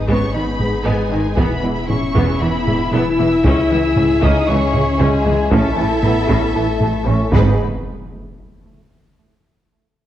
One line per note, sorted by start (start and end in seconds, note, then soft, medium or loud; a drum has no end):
0.00 1.39 G#1 medium
0.00 1.34 D#4 loud
0.00 3.41 G#4 medium
0.00 1.34 B4 medium
0.00 impact medium
0.07 0.16 G#1 medium
0.07 0.17 G#2 medium
0.07 0.24 G#3 medium
0.07 0.33 B3 medium
0.07 0.34 C#4 medium
0.07 0.35 C#6 loud
0.07 taiko medium
0.33 0.43 G#1 medium
0.33 0.43 G#2 medium
0.33 0.43 D#3 medium
0.33 0.86 B3 medium
0.33 0.50 D#4 medium
0.33 0.85 B5 loud
0.60 0.69 G#1 medium
0.60 0.69 G#2 medium
0.60 0.69 G#3 medium
0.60 0.76 G#4 medium
0.60 taiko low-mid medium
0.85 0.94 G#1 medium
0.85 0.94 G#2 medium
0.85 1.36 G#3 medium
0.85 1.01 G#3 loud
0.85 1.10 B3 medium
0.85 1.38 G#5 medium
1.11 1.20 G#1 medium
1.11 1.20 G#2 medium
1.11 1.20 D#3 medium
1.11 1.27 D#4 medium
1.37 3.46 E1 medium
1.37 1.46 E1 medium
1.37 1.46 E2 medium
1.37 1.53 E3 medium
1.37 1.89 B3 medium
1.37 1.62 B3 medium
1.37 5.48 E4 medium
1.37 5.51 E5 medium
1.37 1.90 B5 loud
1.37 taiko loud
1.63 1.72 E1 medium
1.63 1.72 E2 medium
1.63 1.71 E3 medium
1.63 1.79 G#3 medium
1.89 1.98 E1 medium
1.89 1.97 E2 medium
1.89 1.97 G#3 medium
1.89 2.41 C#4 medium
1.89 2.05 E4 medium
1.89 2.40 C#6 loud
1.89 taiko low-mid medium
2.15 2.23 E1 medium
2.15 2.24 E2 loud
2.15 2.31 E3 medium
2.15 2.40 B3 medium
2.15 taiko medium
2.41 2.49 E1 medium
2.41 2.50 E2 medium
2.41 2.49 E3 medium
2.41 2.92 B3 medium
2.41 2.57 B3 medium
2.41 2.93 B5 loud
2.67 2.76 E1 medium
2.67 2.76 E2 medium
2.67 2.75 G#3 medium
2.67 2.83 E4 medium
2.67 taiko low-mid medium
2.93 3.01 E1 loud
2.93 3.01 E2 medium
2.93 3.09 E3 loud
2.93 3.17 B3 medium
2.93 3.42 E4 loud
2.93 3.44 E6 loud
3.19 3.27 E1 medium
3.19 3.27 E2 medium
3.19 3.28 E3 medium
3.19 3.35 B3 medium
3.43 3.52 C#2 loud
3.43 3.53 C#2 loud
3.43 5.53 C#2 medium
3.43 3.61 C#3 loud
3.43 3.69 C#4 loud
3.43 4.20 E4 loud
3.43 5.48 G#4 medium
3.43 4.21 E6 loud
3.43 taiko loud
3.71 3.79 C#2 medium
3.71 3.87 E3 medium
3.71 3.79 E3 medium
3.96 4.05 C#2 medium
3.96 4.05 G#3 medium
3.96 4.13 C#4 medium
3.96 taiko low-mid medium
4.22 4.31 C#2 loud
4.22 4.38 C#3 loud
4.22 4.47 C#4 loud
4.22 4.48 D#4 loud
4.22 4.48 D#6 loud
4.22 taiko medium
4.48 4.57 C#2 medium
4.48 4.57 E3 medium
4.48 4.64 G#3 medium
4.48 5.00 C#4 loud
4.48 5.00 C#6 loud
4.73 4.81 C#2 medium
4.73 4.83 C#2 medium
4.73 4.82 G#3 medium
4.73 4.90 C#4 medium
4.73 taiko low-mid medium
4.99 5.07 C#2 loud
4.99 5.08 C#2 loud
4.99 5.16 C#3 loud
4.99 5.52 G#3 loud
4.99 5.24 C#4 loud
4.99 5.52 G#5 loud
5.25 5.33 C#2 medium
5.25 5.34 C#2 medium
5.25 5.33 E3 medium
5.25 5.42 G#3 medium
5.51 5.60 A1 loud
5.51 7.31 A1 medium
5.51 5.60 A2 loud
5.51 6.02 A3 loud
5.51 5.68 A3 loud
5.51 5.75 C#4 loud
5.51 7.29 E4 loud
5.51 7.29 A4 loud
5.51 7.29 E5 loud
5.51 6.04 A5 loud
5.51 taiko loud
5.77 5.85 A1 medium
5.77 5.86 A2 medium
5.77 5.85 E3 medium
5.77 5.93 C#4 medium
6.02 6.11 A1 medium
6.02 6.12 A2 medium
6.02 6.10 A3 medium
6.02 6.55 B3 loud
6.02 6.19 A4 medium
6.02 6.55 B5 loud
6.02 taiko low-mid medium
6.29 6.37 A1 loud
6.29 6.37 A2 loud
6.29 6.45 A3 loud
6.29 6.53 C#4 medium
6.29 taiko medium
6.54 6.63 A1 medium
6.54 6.64 A2 medium
6.54 6.63 E3 medium
6.54 7.06 A3 loud
6.54 6.71 E4 medium
6.54 7.07 A5 loud
6.81 6.90 A1 medium
6.81 6.89 A2 medium
6.81 6.89 A3 medium
6.81 6.96 A4 medium
6.81 taiko low-mid medium
7.06 7.14 A1 loud
7.06 7.14 A2 medium
7.06 7.22 A3 loud
7.06 7.30 C#4 medium
7.06 7.33 C#4 medium
7.06 7.32 C#6 loud
7.32 7.61 G#1 loud
7.32 7.62 G#1 loud
7.32 7.61 G#2 loud
7.32 7.54 B3 medium
7.32 7.61 D#4 medium
7.32 7.62 G#4 medium
7.32 7.62 B4 medium
7.32 7.61 B5 loud
7.32 taiko loud
7.32 impact medium